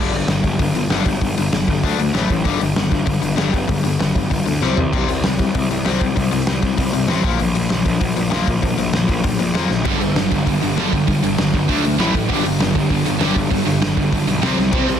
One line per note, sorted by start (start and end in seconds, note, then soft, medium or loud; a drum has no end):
0.00 0.11 G2 medium
0.00 0.11 D3 medium
0.00 0.12 G3 medium
0.12 0.24 G1 medium
0.12 0.27 G2 medium
0.12 0.27 D3 medium
0.12 open hi-hat medium
0.28 0.40 G1 medium
0.28 0.42 G2 medium
0.28 0.43 D3 medium
0.28 snare loud
0.28 open hi-hat medium
0.43 0.55 G1 medium
0.43 0.58 G2 medium
0.43 0.58 D3 medium
0.43 kick medium
0.43 open hi-hat medium
0.59 0.70 G1 medium
0.59 0.73 G2 medium
0.59 0.74 D3 medium
0.59 kick loud
0.59 open hi-hat medium
0.74 0.85 G1 medium
0.74 0.89 G2 medium
0.74 0.89 D3 medium
0.74 open hi-hat medium
0.90 1.01 G1 medium
0.90 1.05 G2 medium
0.90 1.05 D3 medium
0.90 1.06 G3 loud
0.90 snare loud
0.90 open hi-hat medium
1.05 1.17 G1 medium
1.05 1.20 G2 medium
1.05 1.20 D3 medium
1.05 kick medium
1.05 open hi-hat medium
1.21 1.33 G1 medium
1.21 1.36 G2 medium
1.21 1.36 D3 medium
1.21 kick medium
1.21 open hi-hat medium
1.37 1.48 G1 medium
1.37 1.51 G2 medium
1.37 1.51 D3 medium
1.37 open hi-hat medium
1.51 1.63 G1 medium
1.51 1.67 G2 medium
1.51 1.67 D3 medium
1.51 snare loud
1.51 open hi-hat medium
1.68 1.79 G1 medium
1.68 1.82 G2 medium
1.68 1.82 D3 medium
1.68 kick medium
1.68 open hi-hat medium
1.83 1.94 D2 medium
1.83 1.98 D3 medium
1.83 1.98 A3 medium
1.83 1.99 D4 medium
1.83 kick medium
1.83 open hi-hat medium
1.98 2.10 D2 medium
1.98 2.13 D3 medium
1.98 2.13 A3 medium
1.98 open hi-hat medium
2.14 2.25 A1 medium
2.14 2.27 A2 medium
2.14 2.28 E3 loud
2.14 2.29 A3 loud
2.14 snare loud
2.14 open hi-hat medium
2.29 2.41 A1 medium
2.29 2.43 A2 medium
2.29 2.44 E3 medium
2.29 kick medium
2.29 open hi-hat medium
2.44 2.56 G1 loud
2.44 2.59 G2 medium
2.44 2.60 D3 loud
2.44 2.60 G3 medium
2.44 kick loud
2.44 open hi-hat medium
2.60 2.72 G1 medium
2.60 2.74 G2 medium
2.60 2.75 D3 medium
2.60 open hi-hat medium
2.76 2.87 G1 loud
2.76 2.90 G2 medium
2.76 2.90 D3 medium
2.76 snare loud
2.76 open hi-hat medium
2.91 3.03 G1 medium
2.91 3.05 G2 medium
2.91 3.05 D3 medium
2.91 kick medium
2.91 open hi-hat soft
3.06 3.18 G1 medium
3.06 3.21 G2 medium
3.06 3.21 D3 medium
3.06 kick loud
3.06 open hi-hat medium
3.22 3.34 G1 medium
3.22 3.35 G2 medium
3.22 3.36 D3 medium
3.22 open hi-hat medium
3.36 3.50 G1 medium
3.36 3.51 G2 medium
3.36 3.51 D3 medium
3.36 3.53 G3 medium
3.36 snare medium
3.36 open hi-hat medium
3.52 3.64 G1 medium
3.52 3.66 G2 medium
3.52 3.67 D3 medium
3.52 kick medium
3.52 open hi-hat medium
3.68 3.80 G1 medium
3.68 3.82 G2 medium
3.68 3.83 D3 medium
3.68 kick loud
3.68 open hi-hat medium
3.83 3.95 G1 medium
3.83 3.98 G2 medium
3.83 3.98 D3 medium
3.83 open hi-hat medium
3.99 4.11 G1 medium
3.99 4.14 G2 medium
3.99 4.14 D3 medium
3.99 snare loud
3.99 open hi-hat medium
4.15 4.26 G1 medium
4.15 4.29 G2 medium
4.15 4.30 D3 medium
4.15 kick medium
4.15 open hi-hat medium
4.30 4.42 G1 medium
4.30 4.44 G2 medium
4.30 4.45 D3 medium
4.30 kick medium
4.30 open hi-hat medium
4.46 4.58 D2 medium
4.46 4.60 G2 medium
4.46 4.60 D3 medium
4.46 open hi-hat medium
4.62 4.73 C2 medium
4.62 4.76 C3 medium
4.62 4.77 G3 medium
4.62 4.77 C4 medium
4.62 snare medium
4.77 4.93 C2 medium
4.77 4.91 C3 medium
4.77 4.92 G3 medium
4.77 floor tom medium
4.93 5.04 C2 loud
4.93 5.07 C3 medium
4.93 5.08 G3 medium
4.93 5.08 C4 medium
4.93 kick loud
4.93 crash medium
5.09 5.20 C2 medium
5.09 5.23 C3 medium
5.09 5.23 G3 medium
5.09 open hi-hat medium
5.24 5.35 C2 medium
5.24 5.38 C3 medium
5.24 5.38 G3 medium
5.24 snare loud
5.24 open hi-hat medium
5.39 5.50 C2 medium
5.39 5.53 C3 medium
5.39 5.53 G3 medium
5.39 kick medium
5.39 open hi-hat medium
5.55 5.66 C2 medium
5.55 5.69 C3 medium
5.55 5.69 G3 medium
5.55 kick medium
5.55 open hi-hat medium
5.71 5.81 C2 medium
5.71 5.83 C3 medium
5.71 5.84 G3 medium
5.71 open hi-hat medium
5.85 5.97 C2 medium
5.85 5.99 C3 medium
5.85 5.99 G3 medium
5.85 6.00 C4 loud
5.85 snare loud
5.85 open hi-hat medium
6.00 6.12 C2 medium
6.00 6.15 C3 medium
6.00 6.15 G3 medium
6.00 kick medium
6.00 open hi-hat medium
6.16 6.28 C2 loud
6.16 6.30 C3 medium
6.16 6.30 G3 medium
6.16 kick medium
6.16 open hi-hat medium
6.31 6.43 C2 medium
6.31 6.45 C3 medium
6.31 6.46 G3 medium
6.31 open hi-hat medium
6.47 6.58 C2 medium
6.47 6.61 C3 medium
6.47 6.61 G3 medium
6.47 snare loud
6.47 open hi-hat medium
6.62 6.74 C2 medium
6.62 6.76 C3 medium
6.62 6.77 G3 medium
6.62 kick medium
6.62 open hi-hat medium
6.77 6.89 C2 medium
6.77 6.92 C3 medium
6.77 6.92 G3 medium
6.77 kick medium
6.77 open hi-hat medium
6.93 7.05 C2 medium
6.93 7.07 C3 medium
6.93 7.07 G3 medium
6.93 open hi-hat medium
7.08 7.20 A1 medium
7.08 7.23 C3 medium
7.08 7.23 G3 medium
7.08 7.24 C4 medium
7.08 snare loud
7.08 open hi-hat medium
7.24 7.35 A#1 medium
7.24 7.38 A#2 medium
7.24 7.38 F3 medium
7.24 7.39 A#3 medium
7.24 kick loud
7.24 open hi-hat medium
7.39 7.51 A#1 medium
7.39 7.53 A#2 medium
7.39 7.53 F3 medium
7.39 open hi-hat medium
7.54 7.66 A#1 medium
7.54 7.68 A#2 medium
7.54 7.68 F3 medium
7.54 open hi-hat medium
7.69 7.82 A#1 medium
7.69 7.84 A#2 medium
7.69 7.84 F3 medium
7.69 snare loud
7.69 open hi-hat medium
7.85 7.96 A#1 medium
7.85 7.99 A#2 medium
7.85 8.00 F3 medium
7.85 kick medium
7.85 open hi-hat medium
8.01 8.12 A#1 medium
8.01 8.15 A#2 medium
8.01 8.15 F3 medium
8.01 kick medium
8.01 open hi-hat medium
8.16 8.28 A#1 medium
8.16 8.29 A#2 medium
8.16 8.30 F3 medium
8.16 open hi-hat medium
8.30 8.43 A#1 medium
8.30 8.45 A#2 medium
8.30 8.46 F3 medium
8.30 8.46 A#3 loud
8.30 snare loud
8.30 open hi-hat medium
8.46 8.59 A#1 medium
8.46 8.61 A#2 medium
8.46 8.61 F3 medium
8.46 kick medium
8.46 open hi-hat medium
8.62 8.74 A#1 loud
8.62 8.76 A#2 medium
8.62 8.77 F3 medium
8.62 kick medium
8.62 open hi-hat medium
8.78 8.89 A#1 medium
8.78 8.92 A#2 medium
8.78 8.92 F3 medium
8.78 open hi-hat medium
8.93 9.05 A#1 medium
8.93 9.07 A#2 medium
8.93 9.07 F3 medium
8.93 snare loud
8.93 open hi-hat medium
9.08 9.20 A#1 medium
9.08 9.22 A#2 medium
9.08 9.22 F3 medium
9.08 kick medium
9.08 open hi-hat medium
9.24 9.35 A#1 medium
9.24 9.38 A#2 medium
9.24 9.38 F3 medium
9.24 kick loud
9.24 open hi-hat medium
9.39 9.50 A#1 medium
9.39 9.53 A#2 medium
9.39 9.53 F3 medium
9.39 open hi-hat medium
9.54 9.66 F2 medium
9.54 9.68 A#2 medium
9.54 9.68 F3 medium
9.54 9.70 A#3 medium
9.54 snare loud
9.54 open hi-hat medium
9.69 9.82 A#1 medium
9.69 9.83 A#2 medium
9.69 9.84 F3 medium
9.69 snare medium
9.84 9.96 G1 medium
9.84 9.99 G2 medium
9.84 10.00 D3 loud
9.84 10.00 G3 medium
9.84 kick loud
9.84 open hi-hat medium
9.84 crash medium
10.01 10.12 G1 medium
10.01 10.15 G2 medium
10.01 10.15 D3 medium
10.01 open hi-hat medium
10.15 10.27 G1 medium
10.15 10.30 G2 medium
10.15 10.30 D3 medium
10.15 snare loud
10.15 open hi-hat medium
10.31 10.42 G1 medium
10.31 10.45 G2 medium
10.31 10.45 D3 medium
10.31 kick medium
10.31 open hi-hat medium
10.46 10.58 G1 medium
10.46 10.60 G2 medium
10.46 10.61 D3 medium
10.46 11.08 G3 medium
10.46 kick loud
10.46 open hi-hat medium
10.61 10.73 G1 medium
10.61 10.75 G2 medium
10.61 10.76 D3 medium
10.61 open hi-hat medium
10.76 10.88 G1 medium
10.76 10.91 G2 medium
10.76 10.92 D3 medium
10.76 10.92 G3 loud
10.76 snare loud
10.76 open hi-hat medium
10.92 11.03 G1 medium
10.92 11.06 G2 medium
10.92 11.07 D3 medium
10.92 kick medium
10.92 open hi-hat medium
11.07 11.19 G1 medium
11.07 11.21 G2 medium
11.07 11.22 D3 medium
11.07 11.69 G3 loud
11.07 kick medium
11.07 open hi-hat medium
11.23 11.34 G1 medium
11.23 11.37 G2 medium
11.23 11.37 D3 medium
11.23 open hi-hat medium
11.38 11.50 G1 medium
11.38 11.52 G2 medium
11.38 11.52 D3 medium
11.38 snare loud
11.38 open hi-hat medium
11.54 11.65 G1 medium
11.54 11.68 G2 medium
11.54 11.68 D3 medium
11.54 kick medium
11.54 open hi-hat soft
11.69 11.80 D2 medium
11.69 11.83 D3 loud
11.69 11.84 A3 medium
11.69 11.84 D4 medium
11.69 kick loud
11.69 open hi-hat medium
11.84 11.95 D2 medium
11.84 11.98 D3 medium
11.84 11.98 A3 medium
11.84 open hi-hat medium
11.99 12.10 A1 medium
11.99 12.13 A2 medium
11.99 12.13 E3 medium
11.99 12.15 A3 loud
11.99 snare loud
11.99 open hi-hat medium
12.14 12.31 A1 loud
12.14 12.28 A2 medium
12.14 12.28 E3 medium
12.14 kick medium
12.14 open hi-hat medium
12.29 12.40 G1 medium
12.29 12.43 G2 medium
12.29 12.44 D3 medium
12.29 12.44 G3 loud
12.29 kick medium
12.29 open hi-hat medium
12.45 12.56 G1 medium
12.45 12.59 G2 medium
12.45 12.59 D3 medium
12.45 open hi-hat medium
12.60 12.71 G1 loud
12.60 12.74 G2 medium
12.60 12.74 D3 medium
12.60 snare loud
12.60 open hi-hat medium
12.75 12.86 G1 loud
12.75 12.89 G2 medium
12.75 12.89 D3 medium
12.75 kick medium
12.75 open hi-hat medium
12.90 13.01 G1 medium
12.90 13.04 G2 medium
12.90 13.04 D3 medium
12.90 13.53 G3 medium
12.90 kick loud
12.90 open hi-hat medium
13.05 13.16 G1 medium
13.05 13.20 G2 medium
13.05 13.20 D3 medium
13.05 open hi-hat medium
13.20 13.31 G1 medium
13.20 13.35 G2 medium
13.20 13.35 D3 medium
13.20 13.36 G3 loud
13.20 snare loud
13.20 open hi-hat medium
13.36 13.47 G1 loud
13.36 13.50 G2 medium
13.36 13.50 D3 medium
13.36 kick medium
13.36 open hi-hat medium
13.51 13.62 G1 loud
13.51 13.65 G2 medium
13.51 13.65 D3 medium
13.51 14.15 G3 loud
13.51 kick medium
13.51 open hi-hat medium
13.66 13.77 G1 medium
13.66 13.80 G2 medium
13.66 13.81 D3 medium
13.66 open hi-hat medium
13.81 13.92 G1 loud
13.81 13.95 G2 medium
13.81 13.96 D3 medium
13.81 snare loud
13.81 open hi-hat medium
13.97 14.08 G1 medium
13.97 14.11 G2 medium
13.97 14.11 D3 medium
13.97 kick medium
13.97 open hi-hat medium
14.12 14.23 G1 medium
14.12 14.26 G2 medium
14.12 14.26 D3 medium
14.12 14.44 G3 medium
14.12 kick loud
14.12 open hi-hat medium
14.27 14.38 B1 medium
14.27 14.41 G2 medium
14.27 14.41 D3 medium
14.27 open hi-hat medium
14.42 14.54 C2 medium
14.42 14.56 C3 medium
14.42 14.56 G3 medium
14.42 14.57 C4 loud
14.42 snare loud
14.42 open hi-hat medium
14.57 14.73 C2 medium
14.57 14.71 C3 medium
14.57 14.71 G3 medium
14.57 snare medium
14.72 14.84 C2 medium
14.72 14.86 C3 medium
14.72 14.87 G3 medium
14.72 14.87 C4 loud
14.72 kick loud
14.72 crash loud
14.88 14.99 C2 medium
14.88 15.00 C3 medium
14.88 15.00 G3 medium
14.88 open hi-hat medium